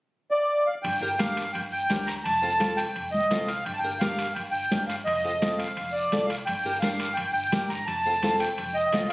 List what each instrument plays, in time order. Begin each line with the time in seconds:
0.31 accordion D5
0.66 accordion F5
0.83 upright bass G1, accordion G5, high timbale, long guiro
1.01 nylon-string guitar D4 G4 A#4
1.19 nylon-string guitar D4 G4 A#4, accordion F5, high conga, high timbale, short guiro
1.37 high timbale, short guiro
1.53 upright bass G1, accordion G5, high timbale, long guiro
1.72 accordion G5
1.90 upright bass D2, nylon-string guitar D4 G4 A#4, high conga, high timbale, low timbale, short guiro
2.06 accordion A#5, high timbale, short guiro
2.24 upright bass F1, accordion A5, high timbale, long guiro
2.42 nylon-string guitar C4 F4 A4
2.59 nylon-string guitar C4 F4 A4, high conga, high timbale, short guiro
2.77 accordion G5, high timbale, short guiro
2.95 upright bass F1, high timbale, long guiro
3.11 accordion D#5, high conga
3.31 upright bass C2, nylon-string guitar C4 F4 A4, high conga, high timbale, low timbale, short guiro
3.47 accordion F5, high timbale, short guiro
3.64 upright bass G1, accordion G5, high timbale, long guiro
3.73 accordion A5
3.79 accordion G5
3.84 nylon-string guitar D4 G4 A#4
3.99 nylon-string guitar D4 G4 A#4, accordion F5, high conga, high timbale, short guiro
4.19 high timbale, short guiro
4.34 upright bass G1, accordion G5, high timbale, long guiro
4.51 accordion G5
4.71 upright bass G1, nylon-string guitar D4 G4 A#4, high conga, high timbale, low timbale, short guiro
4.87 accordion F5, high timbale, short guiro
5.05 upright bass F1, accordion D#5, high timbale, long guiro
5.24 nylon-string guitar C4 F4 A4
5.41 nylon-string guitar C4 F4 A4, high conga, high timbale, short guiro
5.58 accordion F5, high timbale, short guiro
5.77 upright bass F1, high timbale, long guiro
5.92 accordion D5
6.12 upright bass C2, nylon-string guitar C4 F4 A4, high conga, high timbale, short guiro
6.27 accordion F5, high timbale, short guiro
6.45 upright bass G1, accordion G5, high timbale, long guiro
6.65 nylon-string guitar D4 G4 A#4
6.80 nylon-string guitar D4 G4 A#4, accordion F5, high conga, high timbale, short guiro
7.00 high timbale, short guiro
7.14 accordion G5, high timbale
7.18 upright bass G1, long guiro
7.33 accordion G5
7.52 upright bass G1, nylon-string guitar D4 G4 A#4, high conga, high timbale, low timbale, short guiro
7.69 accordion A#5, high timbale, short guiro
7.86 upright bass F1, accordion A5, high timbale, long guiro
8.06 nylon-string guitar C4 F4 A4
8.23 nylon-string guitar C4 F4 A4, high conga, high timbale, short guiro
8.40 accordion G5, high timbale, short guiro
8.58 upright bass F1, high timbale, long guiro
8.74 accordion D#5
8.93 upright bass C2, nylon-string guitar C4 F4 A4, high conga, high timbale, low timbale, short guiro
9.09 accordion F5